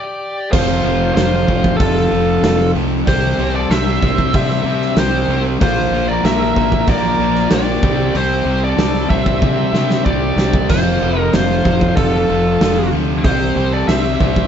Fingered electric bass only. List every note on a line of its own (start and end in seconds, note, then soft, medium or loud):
0.53 0.82 F1 medium
0.85 1.14 F1 medium
1.15 1.45 F1 medium
1.49 1.77 F1 medium
1.80 2.09 F1 medium
2.11 2.40 F1 medium
2.43 2.72 F1 loud
2.75 3.04 C2 medium
3.08 3.36 C2 medium
3.38 3.67 C2 medium
3.70 3.99 C2 medium
4.02 4.31 C2 medium
4.34 4.63 C3 medium
4.64 4.94 C3 medium
4.96 5.26 C2 medium
5.28 5.58 C2 medium
5.61 5.90 A#1 medium
5.91 6.21 A#1 medium
6.23 6.53 A#1 medium
6.57 6.85 A#1 medium
6.87 7.16 A#1 loud
7.18 7.48 A#1 medium
7.51 7.80 A#1 medium
7.82 8.12 C2 loud
8.15 8.44 C2 medium
8.45 8.75 C2 medium
8.78 9.07 C2 medium
9.10 9.39 C2 medium
9.42 9.71 C3 loud
9.73 10.03 C3 medium
10.06 10.35 C2 medium
10.36 10.71 C2 medium
10.69 10.99 F1 medium
11.02 11.31 F1 medium
11.34 11.62 F1 medium
11.65 11.94 F1 medium
11.97 12.26 F1 loud
12.29 12.58 F1 medium
12.61 12.90 F1 medium
12.92 13.21 D2 medium
13.24 13.54 C2 medium
13.56 13.85 C2 medium
13.88 14.17 C2 medium
14.21 14.47 C2 medium